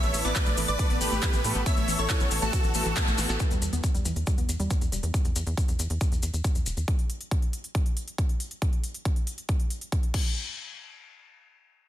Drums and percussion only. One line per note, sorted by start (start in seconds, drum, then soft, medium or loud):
0.03 closed hi-hat soft
0.03 maracas soft
0.14 open hi-hat loud
0.14 maracas loud
0.25 closed hi-hat soft
0.25 maracas soft
0.35 kick loud
0.35 clap loud
0.35 closed hi-hat medium
0.35 ride medium
0.35 maracas medium
0.46 closed hi-hat soft
0.46 maracas soft
0.57 open hi-hat loud
0.57 maracas medium
0.68 closed hi-hat soft
0.68 maracas soft
0.79 kick loud
0.79 closed hi-hat medium
0.79 ride medium
0.79 maracas medium
0.90 closed hi-hat soft
0.90 maracas soft
1.01 open hi-hat loud
1.01 maracas medium
1.12 closed hi-hat soft
1.12 maracas soft
1.23 kick loud
1.23 clap loud
1.23 closed hi-hat medium
1.23 ride medium
1.23 maracas soft
1.33 closed hi-hat soft
1.33 maracas soft
1.44 open hi-hat loud
1.44 maracas medium
1.55 closed hi-hat soft
1.55 maracas soft
1.66 kick loud
1.66 closed hi-hat medium
1.66 ride medium
1.66 maracas soft
1.77 closed hi-hat soft
1.77 maracas soft
1.88 open hi-hat loud
1.88 maracas medium
1.99 closed hi-hat soft
1.99 maracas soft
2.09 kick loud
2.09 clap loud
2.09 closed hi-hat medium
2.09 ride medium
2.09 maracas medium
2.20 closed hi-hat soft
2.20 maracas soft
2.31 open hi-hat loud
2.31 maracas loud
2.42 closed hi-hat soft
2.42 maracas soft
2.53 kick loud
2.53 closed hi-hat medium
2.53 ride medium
2.53 maracas medium
2.64 closed hi-hat soft
2.64 maracas soft
2.74 open hi-hat loud
2.74 maracas loud
2.85 closed hi-hat soft
2.85 maracas soft
2.96 kick loud
2.96 clap loud
2.96 closed hi-hat medium
2.96 ride medium
2.96 maracas soft
3.08 closed hi-hat soft
3.08 maracas soft
3.18 snare medium
3.18 open hi-hat loud
3.18 maracas medium
3.29 snare medium
3.29 closed hi-hat soft
3.29 maracas soft
3.39 kick loud
3.39 closed hi-hat medium
3.39 maracas soft
3.51 closed hi-hat soft
3.51 maracas soft
3.62 closed hi-hat medium
3.62 maracas loud
3.73 closed hi-hat soft
3.73 maracas soft
3.83 kick loud
3.83 closed hi-hat medium
3.83 maracas medium
3.95 closed hi-hat soft
3.95 maracas soft
4.05 closed hi-hat medium
4.05 maracas medium
4.16 closed hi-hat soft
4.16 maracas soft
4.27 kick loud
4.27 closed hi-hat medium
4.27 maracas medium
4.38 closed hi-hat soft
4.38 maracas soft
4.49 closed hi-hat loud
4.49 maracas medium
4.60 closed hi-hat soft
4.60 maracas soft
4.70 kick loud
4.70 closed hi-hat medium
4.70 maracas medium
4.81 closed hi-hat soft
4.81 maracas soft
4.92 closed hi-hat medium
4.92 maracas medium
5.03 closed hi-hat soft
5.03 maracas soft
5.14 kick loud
5.14 closed hi-hat medium
5.14 maracas medium
5.25 closed hi-hat soft
5.25 maracas soft
5.36 closed hi-hat medium
5.36 maracas medium
5.46 closed hi-hat soft
5.46 maracas soft
5.57 kick loud
5.57 closed hi-hat medium
5.57 maracas medium
5.68 closed hi-hat soft
5.68 maracas soft
5.79 closed hi-hat medium
5.79 maracas medium
5.90 closed hi-hat soft
5.90 maracas soft
6.01 kick loud
6.01 closed hi-hat medium
6.01 maracas medium
6.12 closed hi-hat soft
6.12 maracas soft
6.22 closed hi-hat loud
6.22 maracas medium
6.34 closed hi-hat soft
6.34 maracas soft
6.44 kick loud
6.44 closed hi-hat medium
6.44 maracas medium
6.55 closed hi-hat soft
6.55 maracas soft
6.66 closed hi-hat medium
6.66 maracas medium
6.77 closed hi-hat soft
6.77 maracas soft
6.88 kick loud
6.88 closed hi-hat medium
6.99 closed hi-hat soft
7.10 closed hi-hat medium
7.21 closed hi-hat soft
7.31 kick loud
7.31 closed hi-hat medium
7.42 closed hi-hat soft
7.53 closed hi-hat medium
7.64 closed hi-hat soft
7.75 kick loud
7.75 closed hi-hat medium
7.86 closed hi-hat soft
7.97 closed hi-hat medium
8.08 closed hi-hat soft
8.18 kick loud
8.18 closed hi-hat medium
8.29 closed hi-hat soft
8.40 closed hi-hat medium
8.51 closed hi-hat soft
8.62 kick loud
8.62 closed hi-hat medium
8.73 closed hi-hat soft
8.84 closed hi-hat medium
8.94 closed hi-hat soft
9.05 kick loud
9.05 closed hi-hat medium
9.16 closed hi-hat soft
9.27 closed hi-hat medium
9.38 closed hi-hat soft
9.49 kick loud
9.49 closed hi-hat medium
9.60 closed hi-hat soft
9.70 closed hi-hat medium
9.81 closed hi-hat soft
9.92 kick loud
9.92 closed hi-hat medium
10.03 closed hi-hat soft
10.14 kick loud
10.14 crash medium